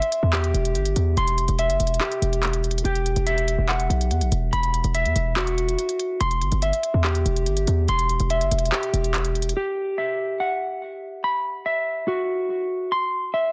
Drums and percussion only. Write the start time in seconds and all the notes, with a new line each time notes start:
0.02 closed hi-hat
0.12 closed hi-hat
0.33 clap
0.44 closed hi-hat
0.54 closed hi-hat
0.65 closed hi-hat
0.75 closed hi-hat
0.85 closed hi-hat
0.96 closed hi-hat
1.17 closed hi-hat
1.27 closed hi-hat
1.38 closed hi-hat
1.48 closed hi-hat
1.59 closed hi-hat
1.70 closed hi-hat
1.80 closed hi-hat, open hi-hat
1.87 closed hi-hat
1.94 closed hi-hat
2.01 clap
2.12 closed hi-hat
2.22 closed hi-hat
2.33 closed hi-hat
2.43 clap, closed hi-hat
2.53 closed hi-hat
2.64 closed hi-hat
2.71 closed hi-hat
2.78 closed hi-hat
2.85 closed hi-hat
2.95 closed hi-hat
3.06 closed hi-hat
3.16 closed hi-hat
3.27 closed hi-hat
3.38 closed hi-hat
3.48 closed hi-hat
3.69 clap
3.80 closed hi-hat
3.90 closed hi-hat
4.01 closed hi-hat
4.11 closed hi-hat
4.21 closed hi-hat
4.32 closed hi-hat
4.53 closed hi-hat
4.63 closed hi-hat
4.74 closed hi-hat
4.84 closed hi-hat
4.95 closed hi-hat
5.05 closed hi-hat
5.16 closed hi-hat
5.37 clap
5.47 closed hi-hat
5.58 closed hi-hat
5.69 closed hi-hat
5.79 closed hi-hat
5.89 closed hi-hat
5.99 closed hi-hat
6.21 closed hi-hat
6.31 closed hi-hat
6.41 closed hi-hat
6.52 closed hi-hat
6.62 closed hi-hat
6.73 closed hi-hat
6.83 closed hi-hat
7.04 clap
7.15 closed hi-hat
7.26 closed hi-hat
7.36 closed hi-hat
7.46 closed hi-hat
7.57 closed hi-hat
7.67 closed hi-hat
7.88 closed hi-hat
7.99 closed hi-hat
8.09 closed hi-hat
8.20 closed hi-hat
8.30 closed hi-hat
8.41 closed hi-hat
8.51 closed hi-hat, open hi-hat
8.59 closed hi-hat
8.65 closed hi-hat
8.72 clap
8.83 closed hi-hat
8.94 closed hi-hat
9.04 closed hi-hat
9.14 clap, closed hi-hat
9.25 closed hi-hat
9.35 closed hi-hat
9.42 closed hi-hat
9.49 closed hi-hat